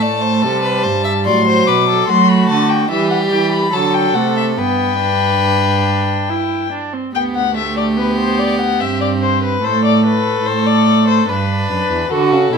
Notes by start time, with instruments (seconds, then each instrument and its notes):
Already playing: cello A2, viola A3, violin A5
0.02 violin D5
0.21 violin C5
0.42 cello C3, viola G3, violin A4
0.62 violin B4
0.83 cello G2, violin C5
1.04 violin E5
1.25 cello A2, viola F#3, violin D5 C6
1.47 violin C5
1.67 cello B2, violin B4 D6
1.89 violin A4
2.08 cello F#3, viola A3, violin F#4 C6
2.29 violin B5
2.49 cello D3, violin A5
2.69 violin G5
2.90 cello E3, viola G3, violin G4 E5
3.10 violin F#5
3.31 cello E3, violin G5
3.52 violin B5
3.73 cello D3, viola F#3, violin A4 A5
3.94 violin G5
4.15 cello C3, viola A3, violin F#5
4.37 violin E5
4.57 cello G2, viola B3, violin B4 G5
5.01 viola D4
6.30 viola E4
6.72 viola D4
6.93 viola C4
7.14 cello D2, viola B3, violin G4 G5
7.36 violin F#5
7.55 viola A3, violin E5
7.77 violin D5
7.97 viola B3, violin B4
8.18 violin C5
8.39 violin D5
8.60 violin F#5
8.80 cello G2, viola C4, violin E5
9.01 violin D5
9.22 violin C5
9.43 violin B4
9.63 cello A2, viola A3, violin A4 C5
9.85 violin D5
10.06 violin B4
10.46 cello A2, violin C5
10.67 violin D5
11.08 violin C5
11.28 cello G2, viola D4, violin B4
11.70 cello F#2
11.90 cello E2
12.11 cello D3, violin F#4 A4, viola F#4
12.32 cello C#3
12.53 cello B2, viola E4, violin G4